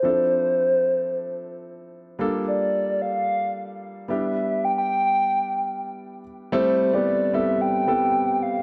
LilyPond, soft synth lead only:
\new Staff \with { instrumentName = "Soft synth lead" } { \time 4/4 \key a \minor \tempo 4 = 111 c''2.~ c''8 r8 | r8 d''4 f''4. r8 e''8~ | e''8 g''16 g''2~ g''8. r8 | c''8. d''8. e''8 g''4. f''8 | }